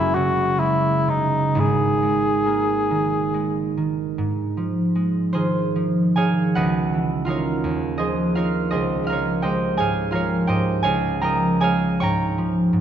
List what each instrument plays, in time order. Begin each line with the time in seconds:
Already playing: harp F#1 F#2 G#3 A#3, cor anglais E4
0.14 harp C#3, cor anglais F#4
0.59 harp G#3, cor anglais E4
1.08 harp C#3, cor anglais D#4
1.55 harp G#1 G#2
1.60 cor anglais G#4
2.02 harp G#3
2.46 harp A#3
2.91 harp D#3
3.34 harp G#3
3.77 harp D#3
4.18 harp G#2
4.57 harp F3
4.95 harp G#3
5.33 harp D#3 F4 G#4 C5
5.76 harp F3
6.16 harp D#3 G#4 C#5 F5 G#5
6.55 harp C#2 F#4 B4 D#5 F#5
6.94 harp E3
7.25 harp C#4 D#4 F4 A#4 F5
7.30 harp C#5
7.64 harp D#2
7.98 harp F3 G#4 C5 D#5
8.35 harp C4 D#4 F4 A#4 C#5 F5
8.71 harp C#2 G#4 C5 D#5
9.04 harp F3 F4 F5
9.09 harp A#4 C#5
9.42 harp G#3 G4 C5 D#5 G5
9.77 harp G#2 G#4 C#5 F5 G#5
10.11 harp F3 F4 A#4 F5
10.15 harp C#5
10.47 harp G#2 G4 C5 D#5 G5
10.83 harp C#2 G#4 C#5 F5 G#5
11.21 harp F3 A#4 D#5 G5 A#5
11.60 harp G#3 G#4 C#5 F5 G#5
12.00 harp G#2 C#5 G5 A#5 C#6
12.38 harp F3
12.73 harp G#2